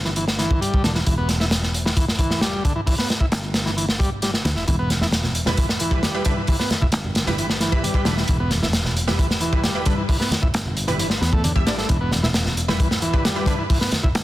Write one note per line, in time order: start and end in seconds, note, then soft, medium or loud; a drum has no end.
0.00 0.80 G1 loud
0.05 0.10 E3 medium
0.05 snare soft
0.16 0.25 E3 medium
0.16 closed hi-hat medium
0.28 snare medium
0.38 0.60 E3 loud
0.38 snare soft
0.38 closed hi-hat medium
0.51 kick medium
0.61 0.83 G3 medium
0.61 closed hi-hat medium
0.74 kick loud
0.84 1.02 E1 medium
0.84 0.92 D3 loud
0.84 snare loud
0.84 closed hi-hat medium
0.95 1.00 E3 medium
0.95 snare soft
1.06 3.32 E1 loud
1.06 1.15 E3 medium
1.06 kick loud
1.06 closed hi-hat medium
1.18 1.29 B3 medium
1.29 snare soft
1.29 closed hi-hat medium
1.40 1.45 E4 loud
1.40 snare soft
1.51 snare loud
1.51 closed hi-hat medium
1.63 snare soft
1.74 closed hi-hat medium
1.85 1.91 E3 medium
1.85 snare medium
1.97 2.05 E3 medium
1.97 kick loud
1.97 closed hi-hat medium
2.08 snare medium
2.19 2.41 E3 loud
2.19 kick loud
2.19 closed hi-hat medium
2.31 snare soft
2.41 2.63 G3 medium
2.41 snare loud
2.41 closed hi-hat medium
2.65 2.73 D3 loud
2.65 kick medium
2.65 closed hi-hat medium
2.76 2.81 E3 medium
2.86 2.95 E3 medium
2.86 kick loud
2.86 open hi-hat medium
2.98 3.09 B3 medium
2.98 snare soft
3.10 snare medium
3.10 closed hi-hat medium
3.20 3.26 E4 loud
3.20 kick medium
3.32 4.41 G1 loud
3.32 snare loud
3.32 closed hi-hat medium
3.54 snare loud
3.54 closed hi-hat medium
3.66 3.71 E3 medium
3.66 snare soft
3.77 3.85 E3 medium
3.77 closed hi-hat medium
3.89 snare medium
3.99 4.10 G3 loud
3.99 kick loud
3.99 closed hi-hat medium
4.22 4.31 G3 medium
4.22 snare soft
4.22 closed hi-hat medium
4.34 snare soft
4.45 4.56 D2 medium
4.45 4.50 E3 medium
4.45 snare loud
4.45 closed hi-hat medium
4.56 4.65 E1 medium
4.56 4.65 E4 medium
4.56 snare soft
4.67 6.93 E1 loud
4.67 4.76 E3 medium
4.67 kick loud
4.67 closed hi-hat medium
4.79 4.90 B3 medium
4.90 snare soft
4.90 closed hi-hat medium
4.90 high conga medium
5.01 5.07 E4 loud
5.01 snare soft
5.01 low conga medium
5.12 snare loud
5.12 closed hi-hat medium
5.24 snare soft
5.24 low conga medium
5.35 closed hi-hat medium
5.46 5.52 E3 medium
5.46 5.58 G3 loud
5.46 5.58 E4 medium
5.46 5.58 B4 loud
5.46 snare medium
5.46 high conga medium
5.46 low conga medium
5.57 5.66 E3 medium
5.57 kick loud
5.57 closed hi-hat medium
5.69 snare medium
5.80 6.02 E3 loud
5.80 closed hi-hat medium
5.91 6.03 G3 medium
5.91 6.03 E4 medium
5.91 6.03 B4 medium
5.91 kick loud
6.03 6.24 G3 medium
6.03 snare loud
6.03 closed hi-hat medium
6.03 high conga medium
6.14 6.23 G3 medium
6.14 6.23 E4 medium
6.14 6.23 B4 medium
6.25 6.34 D3 loud
6.25 6.37 G3 medium
6.25 6.37 E4 medium
6.25 6.37 B4 loud
6.25 kick medium
6.25 closed hi-hat medium
6.37 6.42 E3 medium
6.47 6.57 E3 medium
6.47 kick loud
6.47 open hi-hat medium
6.59 6.70 B3 medium
6.59 snare soft
6.70 snare medium
6.70 closed hi-hat medium
6.70 high conga medium
6.81 6.87 E4 loud
6.81 kick medium
6.81 low conga medium
6.92 8.02 G1 loud
6.92 snare loud
6.92 closed hi-hat medium
7.04 low conga medium
7.15 snare loud
7.15 closed hi-hat medium
7.27 7.32 E3 medium
7.27 7.38 G3 loud
7.27 7.38 E4 medium
7.27 7.38 B4 loud
7.27 snare soft
7.27 high conga medium
7.27 low conga medium
7.38 7.47 E3 medium
7.38 closed hi-hat medium
7.50 snare medium
7.60 7.82 E3 loud
7.60 snare soft
7.60 closed hi-hat medium
7.72 7.83 G3 medium
7.72 7.83 E4 medium
7.72 7.83 B4 loud
7.72 kick medium
7.83 8.05 G3 medium
7.83 closed hi-hat medium
7.83 high conga medium
7.94 8.03 G3 medium
7.94 8.03 E4 medium
7.94 8.03 B4 medium
7.94 kick medium
8.05 8.23 E1 loud
8.05 8.14 D3 loud
8.05 8.17 G3 loud
8.05 8.17 E4 medium
8.05 8.17 B4 loud
8.05 snare loud
8.05 closed hi-hat medium
8.17 8.22 E3 medium
8.17 snare soft
8.28 10.54 E1 loud
8.28 8.37 E3 medium
8.28 kick loud
8.28 closed hi-hat medium
8.40 8.51 B3 medium
8.51 snare soft
8.51 closed hi-hat medium
8.51 high conga medium
8.62 8.67 E4 loud
8.62 snare soft
8.62 low conga medium
8.73 snare loud
8.73 closed hi-hat medium
8.85 snare soft
8.85 low conga medium
8.97 closed hi-hat medium
9.07 9.13 E3 medium
9.07 9.19 G3 loud
9.07 9.19 E4 medium
9.07 9.19 B4 loud
9.07 snare medium
9.07 high conga medium
9.07 low conga medium
9.19 9.27 E3 medium
9.19 kick loud
9.19 closed hi-hat medium
9.31 snare medium
9.41 9.63 E3 loud
9.41 closed hi-hat medium
9.53 9.64 G3 medium
9.53 9.64 E4 medium
9.53 9.64 B4 medium
9.53 kick loud
9.64 9.85 G3 medium
9.64 snare loud
9.64 closed hi-hat medium
9.64 high conga medium
9.75 9.84 G3 medium
9.75 9.84 E4 medium
9.75 9.84 B4 medium
9.85 9.95 D3 loud
9.85 9.98 G3 medium
9.85 9.98 E4 medium
9.85 9.98 B4 loud
9.85 kick loud
9.85 closed hi-hat medium
9.97 10.03 E3 medium
10.09 10.17 E3 medium
10.09 kick loud
10.09 open hi-hat medium
10.20 10.31 B3 medium
10.20 snare soft
10.31 snare medium
10.31 closed hi-hat medium
10.31 high conga medium
10.42 10.48 E4 loud
10.42 kick medium
10.42 low conga medium
10.54 11.21 G1 loud
10.54 snare loud
10.54 closed hi-hat medium
10.66 low conga medium
10.77 closed hi-hat medium
10.87 10.93 E3 medium
10.87 10.99 G3 loud
10.87 10.99 E4 medium
10.87 10.99 B4 loud
10.87 closed hi-hat soft
10.87 high conga medium
10.87 low conga medium
10.99 11.07 E3 medium
10.99 closed hi-hat medium
11.10 snare soft
11.21 11.67 E2 medium
11.21 11.32 B3 medium
11.21 snare soft
11.21 closed hi-hat medium
11.33 11.43 A3 medium
11.33 kick medium
11.44 11.53 D3 medium
11.44 closed hi-hat medium
11.44 high conga medium
11.55 11.65 G3 medium
11.55 11.65 E4 medium
11.55 11.65 E5 medium
11.55 kick medium
11.66 11.84 A1 loud
11.66 11.78 G3 medium
11.66 11.75 D4 medium
11.66 11.78 E4 medium
11.66 11.78 D5 medium
11.66 snare loud
11.66 closed hi-hat medium
11.78 11.88 A3 medium
11.78 snare soft
11.89 14.15 E1 loud
11.89 11.98 E3 medium
11.89 kick loud
11.89 closed hi-hat medium
12.01 12.11 B3 medium
12.12 snare soft
12.12 closed hi-hat medium
12.12 high conga medium
12.23 12.28 E4 loud
12.23 snare soft
12.23 low conga medium
12.34 snare loud
12.34 closed hi-hat medium
12.46 snare soft
12.46 low conga medium
12.57 closed hi-hat medium
12.68 12.73 E3 medium
12.68 12.80 G3 loud
12.68 12.79 E4 medium
12.68 12.79 B4 loud
12.68 snare medium
12.68 high conga medium
12.68 low conga medium
12.80 12.88 E3 medium
12.80 kick loud
12.80 closed hi-hat medium
12.91 snare medium
13.02 13.23 E3 loud
13.02 closed hi-hat medium
13.13 13.25 G3 medium
13.13 13.25 E4 medium
13.13 13.25 B4 loud
13.13 kick medium
13.25 13.46 G3 medium
13.25 snare loud
13.25 closed hi-hat medium
13.25 high conga medium
13.36 13.45 G3 medium
13.36 13.45 E4 medium
13.36 13.45 B4 medium
13.46 13.56 D3 loud
13.46 13.59 G3 loud
13.46 13.59 E4 medium
13.46 13.59 B4 loud
13.46 kick medium
13.46 closed hi-hat medium
13.58 13.64 E3 medium
13.70 13.78 E3 medium
13.70 kick loud
13.70 open hi-hat medium
13.81 13.92 B3 medium
13.81 snare soft
13.92 snare medium
13.92 closed hi-hat medium
13.92 high conga medium
14.03 14.09 E4 loud
14.03 kick medium
14.03 low conga medium
14.15 14.24 G1 loud
14.15 snare loud
14.15 closed hi-hat medium